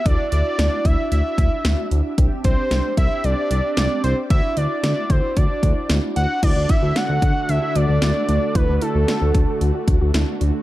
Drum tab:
CC |--------|--------|--------|x-------|
HH |xxxxxxxx|xxxxxxxx|xxxxxxxx|xxxxxxxx|
SD |--o---o-|--o---o-|--o---o-|--o---o-|
BD |o--o-o--|oo-o----|o--ooo--|oo-o----|

CC |--------|
HH |xxxxxxxx|
SD |--o---o-|
BD |o--o-o--|